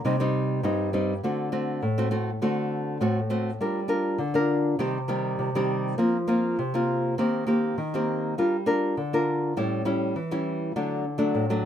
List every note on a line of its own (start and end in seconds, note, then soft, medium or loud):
0.05 0.61 C3 medium
0.05 0.15 G3 medium
0.05 0.15 C4 medium
0.05 0.15 D#4 medium
0.20 0.59 G3 medium
0.20 0.60 C4 medium
0.20 0.60 D#4 medium
0.63 1.20 G2 medium
0.63 0.89 G3 medium
0.63 0.89 C4 medium
0.63 0.89 D#4 medium
0.93 1.12 G3 medium
0.93 1.13 C4 medium
0.93 1.13 D#4 medium
1.23 1.80 D3 medium
1.23 1.48 A3 soft
1.23 1.49 C4 soft
1.23 1.49 F#4 soft
1.52 1.80 A3 medium
1.52 1.81 C4 soft
1.52 1.81 F#4 medium
1.82 2.39 A2 medium
1.98 2.08 A3 medium
1.98 2.08 C4 medium
1.98 2.08 F#4 medium
2.11 2.29 A3 medium
2.11 2.29 C4 medium
2.11 2.30 F#4 medium
2.42 2.98 D3 medium
2.42 2.97 A3 medium
2.42 2.97 C4 medium
2.42 2.97 F#4 medium
3.00 3.58 A2 medium
3.00 3.19 A3 medium
3.00 3.19 C4 medium
3.00 3.19 F#4 medium
3.30 3.50 A3 medium
3.30 3.50 C4 medium
3.30 3.50 F#4 medium
3.60 4.17 G3 medium
3.60 3.78 D4 soft
3.60 3.79 F4 soft
3.60 3.79 A#4 medium
3.88 4.17 D4 medium
3.88 4.18 F4 medium
3.88 4.18 A#4 medium
4.18 4.76 D3 medium
4.34 4.75 D4 medium
4.34 4.75 F4 medium
4.34 4.75 A#4 medium
4.79 5.36 C3 medium
4.79 4.97 D#3 medium
4.79 4.97 G3 medium
4.79 4.97 C4 medium
4.79 4.98 G4 medium
5.08 5.49 D#3 medium
5.08 5.49 G3 medium
5.08 5.49 C4 medium
5.08 5.50 G4 medium
5.39 5.96 C3 medium
5.55 5.95 D#3 medium
5.55 5.95 G3 medium
5.55 5.95 C4 medium
5.55 5.95 G4 medium
5.98 6.55 F3 medium
5.98 6.16 A#3 medium
5.98 6.16 C4 soft
5.98 6.17 F4 medium
6.27 6.56 A#3 medium
6.27 6.56 C4 medium
6.27 6.57 F4 medium
6.59 7.15 C3 medium
6.74 7.14 A#3 medium
6.74 7.14 C4 medium
6.74 7.14 F4 medium
7.18 7.75 D#3 medium
7.18 7.43 A#3 medium
7.18 7.43 C4 medium
7.18 7.44 G4 medium
7.47 7.75 A#3 medium
7.47 7.76 C4 medium
7.47 7.76 G4 medium
7.78 8.34 D#3 medium
7.94 8.33 A#3 medium
7.94 8.34 C4 medium
7.94 8.34 G4 medium
8.38 8.94 G3 medium
8.38 8.55 D4 soft
8.38 8.55 F4 medium
8.38 8.55 A#4 medium
8.66 8.95 D4 medium
8.66 8.95 F4 medium
8.66 8.95 A#4 medium
8.97 9.54 D3 medium
9.13 9.52 D4 medium
9.13 9.53 F4 medium
9.13 9.53 A#4 medium
9.57 10.13 A2 medium
9.57 9.82 G3 medium
9.57 9.82 C#4 medium
9.57 9.82 E4 medium
9.85 10.14 G3 soft
9.85 10.14 C#4 medium
9.85 10.14 E4 medium
10.16 10.72 E3 medium
10.31 10.71 G3 medium
10.31 10.71 C#4 medium
10.31 10.71 E4 medium
10.76 11.32 D3 medium
10.76 11.04 F#3 soft
10.76 11.04 A3 soft
10.76 11.04 D4 medium
11.18 11.44 F#3 medium
11.18 11.44 A3 medium
11.18 11.44 D4 medium
11.35 11.65 A2 medium
11.50 11.65 F#3 medium
11.50 11.65 A3 medium
11.50 11.65 D4 medium